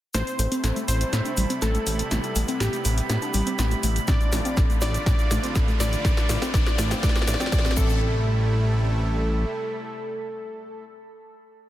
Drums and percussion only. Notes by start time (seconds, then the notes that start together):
0.14 snare, closed hi-hat, shaker
0.27 closed hi-hat, shaker
0.39 open hi-hat, shaker
0.52 closed hi-hat, shaker
0.64 snare, closed hi-hat, shaker
0.76 closed hi-hat, shaker
0.88 open hi-hat, shaker
1.01 closed hi-hat, shaker
1.13 snare, closed hi-hat, shaker
1.25 closed hi-hat, shaker
1.37 open hi-hat, shaker
1.50 closed hi-hat, shaker
1.62 snare, closed hi-hat, shaker
1.75 closed hi-hat, shaker
1.87 open hi-hat, shaker
1.99 closed hi-hat, shaker
2.11 snare, closed hi-hat, shaker
2.23 closed hi-hat, shaker
2.36 open hi-hat, shaker
2.48 closed hi-hat, shaker
2.60 snare, closed hi-hat, shaker
2.73 closed hi-hat, shaker
2.85 open hi-hat, shaker
2.98 closed hi-hat, shaker
3.10 snare, closed hi-hat, shaker
3.22 closed hi-hat, shaker
3.34 open hi-hat, shaker
3.47 closed hi-hat, shaker
3.59 snare, closed hi-hat, shaker
3.71 closed hi-hat, shaker
3.83 open hi-hat, shaker
3.96 closed hi-hat, shaker
4.07 kick, snare, closed hi-hat, shaker
4.21 closed hi-hat, shaker
4.32 snare, open hi-hat, shaker
4.45 closed hi-hat, shaker
4.57 kick, snare, closed hi-hat, shaker
4.70 closed hi-hat, shaker
4.81 snare, open hi-hat, shaker
4.94 closed hi-hat, shaker
5.06 kick, snare, closed hi-hat, shaker
5.19 closed hi-hat, shaker
5.31 snare, open hi-hat, shaker
5.43 closed hi-hat, shaker
5.55 kick, snare, closed hi-hat, shaker
5.68 closed hi-hat, shaker
5.80 snare, open hi-hat, shaker
5.93 closed hi-hat, shaker
6.05 kick, snare, closed hi-hat, shaker
6.17 snare, closed hi-hat, shaker
6.29 snare, open hi-hat, shaker
6.42 snare, closed hi-hat, shaker
6.54 kick, snare, closed hi-hat, shaker
6.66 snare, closed hi-hat, shaker
6.78 snare, open hi-hat, shaker
6.91 snare, closed hi-hat, shaker
7.03 kick, snare, closed hi-hat, shaker
7.09 snare
7.16 snare, closed hi-hat, shaker
7.22 snare
7.28 snare, open hi-hat, shaker
7.34 snare
7.40 snare, closed hi-hat, shaker
7.46 snare
7.52 kick, snare, closed hi-hat, shaker
7.58 snare
7.65 snare, closed hi-hat, shaker
7.71 snare
7.77 kick, shaker
7.89 shaker